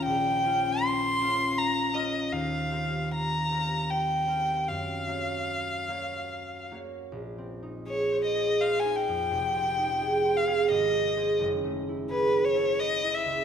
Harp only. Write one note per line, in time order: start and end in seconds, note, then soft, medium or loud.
0.00 0.44 C#4 soft
0.00 0.44 F4 soft
0.00 0.45 A#4 soft
0.00 0.45 F5 soft
0.06 2.35 A#1 soft
0.45 1.20 C#4 soft
0.45 1.20 F4 soft
0.45 1.21 A#4 soft
0.45 1.21 F5 soft
1.21 1.93 C#4 soft
1.21 1.94 F4 soft
1.21 1.93 A#4 soft
1.21 1.94 F5 soft
1.94 2.35 C#4 soft
1.94 5.85 F4 soft
1.94 2.71 A#4 soft
1.94 2.71 F5 soft
2.32 4.72 D#2 soft
2.71 3.50 C4 soft
2.71 3.51 G4 soft
2.71 3.52 A#4 soft
2.71 3.51 F5 soft
3.51 4.26 C4 soft
3.51 4.26 G4 soft
3.51 4.27 A#4 soft
3.51 4.27 F5 soft
4.27 4.71 C4 soft
4.27 4.71 G4 soft
4.27 5.06 A#4 soft
4.27 8.19 F5 soft
4.68 7.16 F#2 soft
5.06 5.87 A#3 soft
5.06 5.88 F#4 soft
5.06 5.89 A#4 soft
5.06 5.88 C#5 soft
5.88 6.70 A#3 soft
5.88 6.71 F#4 soft
5.88 6.71 A#4 soft
5.88 6.71 C#5 soft
6.71 9.34 A#3 soft
6.71 7.16 F#4 soft
6.71 9.34 A#4 soft
6.71 9.34 C#5 soft
7.12 9.34 A#1 soft
7.38 9.54 C4 soft
7.63 8.84 D#4 soft
7.86 8.34 G#4 soft
8.12 8.59 C5 soft
8.35 10.00 G#4 soft
8.60 10.24 C5 soft
8.85 9.77 D#4 soft
9.08 9.34 F2 soft
9.31 10.74 F1 soft
9.55 11.45 C4 soft
9.78 11.44 D#4 soft
10.01 10.46 G#4 soft
10.25 11.16 C5 soft
10.47 11.15 G#4 soft
10.70 11.44 G#1 soft
10.94 11.44 A#3 soft
11.16 12.09 G#4 soft
11.16 11.44 C5 soft
11.39 13.44 F#1 soft
11.64 13.44 A3 soft
11.89 13.03 E4 soft
12.11 13.44 G#4 soft
12.33 12.78 B4 soft
12.55 13.44 A4 soft
12.79 13.44 B4 soft
13.04 13.44 E4 soft
13.25 13.44 C#2 soft